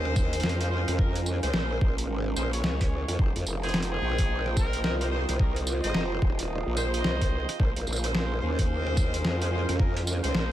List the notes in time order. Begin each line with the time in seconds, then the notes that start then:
Already playing: D#2 C#4 F4 G#4 A#4 C5 D#5 F5 G#5
0.05 cross-stick
0.16 kick, tambourine
0.33 closed hi-hat
0.40 F2, snare, closed hi-hat
0.49 closed hi-hat
0.60 C#4 F4 G#4 C5, closed hi-hat
0.71 C#4 F4 G#4 C5
0.88 F2, cross-stick, closed hi-hat
0.98 C#4 F4 G#4 A#4, kick
1.15 closed hi-hat
1.26 tambourine
1.43 C#2 C#4 F4 G#4 C5, closed hi-hat
1.53 A#1, snare
1.81 A#1 C#4 F4 G#4 C5, kick
1.98 closed hi-hat
2.09 G#1
2.36 A#1 C#4 F4 G#4 C5, tambourine
2.53 C#4 F4 G#4 C#5, closed hi-hat
2.64 C#2, snare
2.81 kick, closed hi-hat
3.08 F2, cross-stick, closed hi-hat
3.18 F1 D#4 F4 G4 G#4 C5 F5 D#6, kick
3.36 F2, closed hi-hat
3.40 D#5
3.46 F1, tambourine
3.63 D#4 G4 G#4 C5, closed hi-hat
3.69 closed hi-hat
3.74 snare, closed hi-hat
3.82 closed hi-hat
3.90 G#4
4.01 A#1 D#4 G#4 C5 G5
4.18 kick, closed hi-hat
4.46 cross-stick
4.56 A#4, kick, tambourine
4.73 closed hi-hat
4.83 C2 A#4, snare
5.00 D#4 G4 G#4 A#4 C5, closed hi-hat
5.11 D#4 G4 G#4 C5
5.29 C2, cross-stick, closed hi-hat
5.39 D#4 G4 G#4 A#4, kick
5.56 closed hi-hat
5.67 tambourine
5.83 G#1 D#4 G4 G#4 C5 D#5, closed hi-hat
5.94 F1, snare
6.22 D#4 G4 G#4 C5, kick
6.39 closed hi-hat
6.66 A#1
6.77 D#4 G4 G#4 C5, tambourine
6.93 D#4 G4 G#4 D#5, closed hi-hat
7.04 C2, snare
7.21 kick, closed hi-hat
7.49 cross-stick, closed hi-hat
7.58 A#1 C#4 F4 G#4 A#4 C5, kick
7.76 A#1 A#4, closed hi-hat
7.87 A#1, tambourine
7.93 tambourine
7.96 tambourine
8.04 C#4 F4 G#4 C5, closed hi-hat
8.15 snare
8.38 D#2 C#4 F4 G#4 C5
8.59 kick, closed hi-hat
8.87 cross-stick
8.97 kick, tambourine
9.14 closed hi-hat
9.25 F2, snare
9.41 C#4 F4 G#4 C5, closed hi-hat
9.52 C#4 F4 G#4 C5
9.69 F2, cross-stick, closed hi-hat
9.79 C#4 F4 G#4 A#4, kick
9.97 closed hi-hat
10.07 tambourine
10.23 C#2 C#4 F4 G#4 C5, closed hi-hat
10.34 A#1, snare